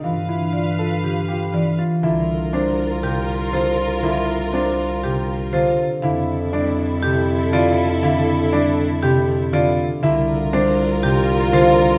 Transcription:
X:1
M:4/4
L:1/8
Q:1/4=120
K:Gm
V:1 name="Marimba"
f z d z G z d z | [K:Cmix] e z c z G z c z | e z c z G z c z | f z d z G z d z |
f z d z G z d z | e z c z G z c z |]
V:2 name="String section"
[=Bf]6- [Bf] z | [K:Cmix] [FB]8- | [FB]6- [FB] z | [EA]8- |
[EA]6- [EA] z | [FB]8 |]
V:3 name="French horn"
F F F F F F F z | [K:Cmix] F8- | F6- F z | E8- |
E6- E z | F8 |]
V:4 name="Grand piano"
z =E z A z G z F | [K:Cmix] E z D z G z F z | E z D z G z F z | E z D z G z F z |
E z D z G z F z | E z D z G z F z |]
V:5 name="Harp" clef=bass
=E,4 D,2 E,2 | [K:Cmix] D,2 G,2 C,2 D,2 | D,2 G,2 C,2 D,2 | D,2 G,2 C,2 D,2 |
D,2 G,2 C,2 D,2 | D,2 G,2 C,2 D,2 |]
V:6 name="Bass clarinet" clef=bass
G,,8 | [K:Cmix] C,,8- | C,,8 | F,,8- |
F,,8 | C,,8 |]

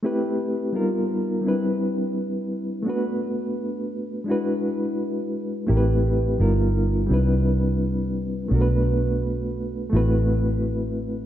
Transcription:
X:1
M:4/4
L:1/8
Q:"Swing 16ths" 1/4=85
K:Ador
V:1 name="Reed electric piano"
[A,CEGB]2 [G,B,^D=F^A]2 [G,C=DEB]4 | [A,B,DFB]4 [^G,DEFB]4 | [A,CEG_B=B]2 [G,B,^D=F^A]2 [G,C=DEB]4 | [A,B,DF_B=B]4 [A,B,CEFB]4 |]
V:2 name="Fingered electric bass" clef=bass
z8 | z8 | A,,,2 G,,,2 C,,4 | B,,,4 A,,,4 |]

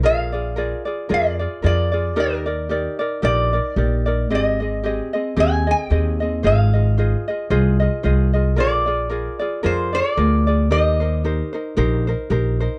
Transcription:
X:1
M:4/4
L:1/8
Q:"Swing" 1/4=112
K:Eb
V:1 name="Resonator guitar played with a steel bar"
f4 d2 d2 | B3 z d2 z2 | e4 a g3 | f6 z2 |
d4 c d3 | e6 z2 |]
V:2 name="Ukulele"
[FABd] [FAd] [FABd] [FAd] [FABd] [FAd] [FABd] [FAd] | [EGBd] [EBd] [EGBd] [EBd] [EGBd] [EBd] [EGBd] [EBd] | [CGAe] [CAe] [CGAe] [CAe] [CGAe] [CAe] [CGAe] [CAe] | [FAce] [FAe] [FAce] [FAe] [FAce] [FAe] [FAce] [FAe] |
[FABd] [FAd] [FABd] [FAd] [FABd] [FAd] [FABd] [FAd] | [EGBc] [EBc] [EGBc] [EBc] [EGBc] [EBc] [EGBc] [EBc] |]
V:3 name="Upright bass" clef=bass
B,,,4 F,,2 F,,2 | E,,4 B,,,2 B,,,2 | A,,,4 E,,2 E,,2 | A,,,4 C,,2 C,,2 |
B,,,4 F,,2 D,,2 | E,,4 B,,,2 B,,,2 |]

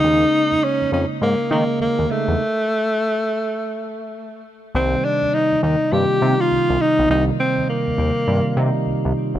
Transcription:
X:1
M:4/4
L:1/16
Q:"Swing 16ths" 1/4=102
K:Ebmix
V:1 name="Alto saxophone"
E4 D2 D2 B,2 B,2 B,2 =A,2- | =A,12- A,2 z2 | [K:Cm] C2 D2 E2 E2 G3 F3 E2 | E2 C2 B,8 z4 |]
V:2 name="Tine electric piano" clef=bass
[D,A,B,E]6- [D,A,B,E] z3 [D,A,B,E]4 [D,A,B,E]2 | z16 | [K:Cm] [C,E,G,B,E]6- [C,E,G,B,E] z [C,E,G,B,F]2 [C,E,G,B,E]6 | [C,E,G,B,E]6- [C,E,G,B,E] z [C,E,G,B,F]2 [C,E,G,B,E]6 |]
V:3 name="Analog synth bass" clef=bass
E,,2 z F,, z F,, F,, z A,, z E, z E,, E,, z =E,, | z16 | [K:Cm] C,,2 z E,, z E,, E,, z G,, z C, z C,, C,, z =B,,, | C,,2 z E,, z E,, E,, z G,, z C, z C,, C,, z =E,,, |]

